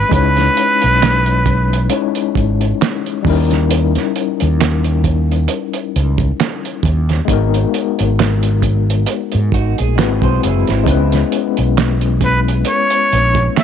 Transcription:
Already playing: tine electric piano B4, muted trumpet B4
0.09 fretless electric bass C#2, tine electric piano G#3 C#4 D#4, kick, closed hi-hat
0.14 tine electric piano E4 C#5, muted trumpet B4
0.37 snare, closed hi-hat
0.57 closed hi-hat
0.82 fretless electric bass B1, closed hi-hat
1.02 snare, clap, closed hi-hat
1.26 closed hi-hat
1.46 kick, closed hi-hat
1.73 closed hi-hat
1.90 tine electric piano G#3 C#4 D#4 E4 C#5, closed hi-hat
2.15 closed hi-hat
2.35 fretless electric bass G#1, kick, closed hi-hat
2.61 closed hi-hat
2.82 snare, clap, closed hi-hat
3.06 closed hi-hat
3.22 fretless electric bass D#2, tine electric piano G3 C#4 D#4, kick
3.27 tine electric piano E4 A#4, open hi-hat
3.51 snare, closed hi-hat
3.71 closed hi-hat
3.95 snare, closed hi-hat
4.16 closed hi-hat
4.40 fretless electric bass D#2, closed hi-hat
4.61 snare, clap, closed hi-hat
4.84 closed hi-hat
5.04 kick, closed hi-hat
5.32 closed hi-hat
5.48 closed hi-hat
5.73 closed hi-hat
5.96 fretless electric bass C#2, closed hi-hat
6.18 kick, closed hi-hat
6.40 snare, clap, closed hi-hat
6.65 closed hi-hat
6.83 fretless electric bass D#2, kick, closed hi-hat
7.09 snare, closed hi-hat
7.25 tine electric piano G#3 B3 D#4, kick
7.29 fretless electric bass G#1, tine electric piano F#4 A#4, closed hi-hat
7.54 closed hi-hat
7.74 closed hi-hat
7.99 fretless electric bass G#1, closed hi-hat
8.19 snare, clap, closed hi-hat
8.43 closed hi-hat
8.62 kick, closed hi-hat
8.90 closed hi-hat
9.06 closed hi-hat
9.32 fretless electric bass G#2, closed hi-hat
9.52 fretless electric bass G#1, clean electric guitar D#4 F#4, kick, closed hi-hat
9.78 fretless electric bass A#1, clean electric guitar G#4, closed hi-hat
9.96 fretless electric bass G#1, tine electric piano G#3 B3 E4 F#4 B4, snare, clap, closed hi-hat
10.03 tine electric piano C4
10.22 fretless electric bass B1, clean electric guitar G#4 C5, kick, closed hi-hat
10.43 fretless electric bass F#1, clean electric guitar E4 G#4, closed hi-hat
10.67 fretless electric bass G#1, clean electric guitar C4 E4, snare, closed hi-hat
10.83 tine electric piano G#3 B3 C#4, kick
10.87 fretless electric bass C#2, tine electric piano E4 B4, closed hi-hat
11.12 snare, closed hi-hat
11.32 closed hi-hat
11.57 fretless electric bass B1, closed hi-hat
11.77 snare, clap, closed hi-hat
12.01 closed hi-hat
12.21 muted trumpet B4, kick, closed hi-hat
12.48 closed hi-hat
12.65 closed hi-hat
12.69 muted trumpet C#5
12.90 closed hi-hat
13.13 fretless electric bass A#1, closed hi-hat
13.35 kick, closed hi-hat
13.57 muted trumpet E5, snare, clap, closed hi-hat

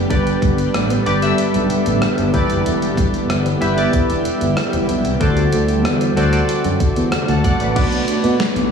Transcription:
Already playing: ambient pad D3 G3 B3 G4, synth keys D4 G4 B4 D5
0.10 fretless electric bass G1, synth keys G2 D4 G4 B4 D5, ambient pad A4, kick, closed hi-hat
0.27 closed hi-hat
0.42 fretless electric bass G1, kick, closed hi-hat
0.58 closed hi-hat
0.74 fretless electric bass A1, cross-stick, closed hi-hat
0.90 closed hi-hat
1.06 fretless electric bass G1, synth keys D4 G4 B4 D5, closed hi-hat
1.22 synth keys D4 G4 B4 E5, closed hi-hat
1.38 closed hi-hat
1.54 fretless electric bass B1, closed hi-hat
1.70 closed hi-hat
1.86 fretless electric bass A1, closed hi-hat
2.02 cross-stick, closed hi-hat
2.18 fretless electric bass G1, closed hi-hat
2.34 fretless electric bass E1, synth keys E3 E4 G4 B4 D5, ambient pad E4, kick, closed hi-hat
2.50 fretless electric bass F#1, closed hi-hat
2.66 fretless electric bass E1, closed hi-hat
2.82 closed hi-hat
2.97 fretless electric bass E1, kick, closed hi-hat
3.14 closed hi-hat
3.30 fretless electric bass G1, cross-stick, closed hi-hat
3.46 closed hi-hat
3.61 fretless electric bass G1, synth keys E4 G4 B4 E5, closed hi-hat
3.76 synth keys E4 G4 B4 D5, closed hi-hat
3.93 kick, closed hi-hat
4.09 fretless electric bass E1, closed hi-hat
4.25 closed hi-hat
4.41 fretless electric bass G1, closed hi-hat
4.57 cross-stick, closed hi-hat
4.73 fretless electric bass E1, closed hi-hat
4.89 fretless electric bass B1, closed hi-hat
5.05 fretless electric bass C2, closed hi-hat
5.20 fretless electric bass D2, ambient pad C3 F#3 A3 D4 F#4, synth keys D3 F#4 A4 C5 D5, kick, closed hi-hat
5.37 closed hi-hat
5.53 fretless electric bass D2, closed hi-hat
5.68 closed hi-hat
5.85 fretless electric bass E2, cross-stick, closed hi-hat
6.01 closed hi-hat
6.17 fretless electric bass D2, synth keys F#4 A4 C5 D5, closed hi-hat
6.32 synth keys F#4 A4 C5 D5, closed hi-hat
6.49 closed hi-hat
6.64 fretless electric bass F#2, closed hi-hat
6.80 kick, closed hi-hat
6.96 fretless electric bass E2, closed hi-hat
7.12 cross-stick, closed hi-hat
7.28 fretless electric bass D2, synth keys F#5 A5, closed hi-hat
7.44 fretless electric bass G1, synth keys D5 F#5, kick, closed hi-hat
7.60 fretless electric bass A1, synth keys B4 D5, closed hi-hat
7.76 fretless electric bass B1, synth keys B2 D4 F#4 B4 D5, ambient pad B2 D3 D4 F#4, kick, closed hi-hat, crash
7.92 closed hi-hat
8.08 closed hi-hat
8.24 fretless electric bass B2, closed hi-hat
8.40 snare, closed hi-hat
8.56 fretless electric bass B1, closed hi-hat

